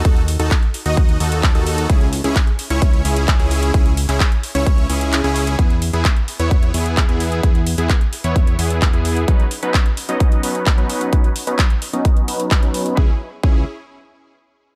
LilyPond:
<<
  \new Staff \with { instrumentName = "Supersaw synth" } { \time 4/4 \key cis \minor \tempo 4 = 130 <fis' a'>16 r8 <dis' fis' a'>16 r8. <dis' fis' dis''>8. <dis' fis' a'>8. <dis' fis' a'>8. | <cis' e' gis'>16 r8 <cis' e' gis'>16 r8. <cis' e' cis''>8. <cis' e' gis'>8. <cis' e' gis'>8. | e'16 r8 <cis' e' gis'>16 r8. <cis' e' cis''>8. <cis' e' gis'>8. <cis' e' gis'>8. | <b e' gis'>16 r8 <b e' gis'>16 r8. <b e' cis''>8. <b e' gis'>8. <b e' gis'>8. |
<b e' gis'>16 r8 <b e' gis'>16 r8. <b e' cis''>8. <b e' gis'>8. <b e' gis'>8. | <fis b cis' dis' b'>16 r8 <fis b cis' dis' b'>16 r8. <fis b cis' dis' dis''>8. <fis b cis' dis' b'>8. <fis b cis' dis' b'>8. | r8. <fis b cis' dis' b'>16 r8. <fis b cis' dis' dis''>8. <fis b cis' dis' b'>8. <fis b cis' dis' b'>8. | <cis' e' gis'>16 r8. <cis' e' gis'>8 r2 r8 | }
  \new Staff \with { instrumentName = "Analog synth bass" } { \clef bass \time 4/4 \key cis \minor dis,8. dis,16 r8. dis,8. dis,8. dis,8. | cis,8. cis,16 r8. cis,8. cis,8. cis,8. | cis,8. cis,16 r8. cis,8. cis,8. cis,8. | e,8. e,16 r8. e,8. e,8. e,8. |
e,8. e,16 r8. e,8. e,8. e,8. | r1 | r1 | cis,16 r8. cis,8 r2 r8 | }
  \new DrumStaff \with { instrumentName = "Drums" } \drummode { \time 4/4 <hh bd>16 hh16 hho16 hh16 <hc hh bd>16 hh16 hho16 hh16 <hh bd>16 hh16 hho16 hh16 <hc hh bd>16 hh16 hho16 hh16 | <hh bd>16 hh16 hho16 hh16 <hc hh bd>16 hh16 hho16 hh16 <hh bd>16 hh16 hho16 hh16 <hc hh bd>16 hh16 hho16 hh16 | <hh bd>16 hh16 hho16 <hc hh>16 <hc hh bd>16 hh16 hho16 hh16 <hh bd>16 hh16 hho16 hh16 <hc hh>16 hh16 hho16 hh16 | <hh bd>16 hh16 hho16 hh16 <hc hh bd>16 hh16 hho16 hh16 <hh bd>16 hh16 hho16 hh16 <hc hh bd>16 hh16 hho16 hh16 |
<hh bd>16 hh16 hho16 hh16 <hc hh bd>16 hh16 hho16 hh16 <hh bd>16 hh16 hho16 hh16 <hc hh bd>16 hh16 hho16 hh16 | <hh bd>16 hh16 hho16 hh16 <hc hh bd>16 hh16 hho16 hh16 <hh bd>16 hh16 hho16 hh16 <hc hh bd>16 hh16 hho16 hh16 | <hh bd>16 hh16 hho16 hh16 <hc hh bd>16 hh16 hho16 hh16 <hh bd>16 hh16 hho16 hh16 <hc hh bd>16 hh16 hho16 hh16 | bd4 bd4 r4 r4 | }
>>